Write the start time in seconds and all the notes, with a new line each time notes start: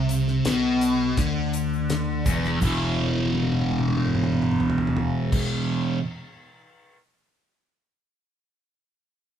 Already playing: C2 C3
0.09 closed hi-hat, shaker
0.28 snare, shaker
0.45 B1 B2, snare, closed hi-hat, shaker
0.81 closed hi-hat, shaker
1.17 D2 D3, kick, closed hi-hat, shaker
1.54 closed hi-hat, shaker
1.73 shaker
1.90 snare, closed hi-hat, shaker
2.26 E1 E2, kick, closed hi-hat, shaker
2.44 snare, shaker
2.60 E1 E2 B2, kick, crash, shaker
2.65 E3
2.98 high tom
3.08 high tom
3.17 high tom
3.26 high tom
3.34 high tom
3.43 high tom
3.52 mid tom
3.61 mid tom
3.70 mid tom
3.79 mid tom
3.88 mid tom
3.97 mid tom
4.06 mid tom
4.15 mid tom
4.23 mid tom
4.33 mid tom
4.42 mid tom
4.51 mid tom
4.60 floor tom
4.70 floor tom
4.78 floor tom
4.87 floor tom
4.97 floor tom
5.32 kick, crash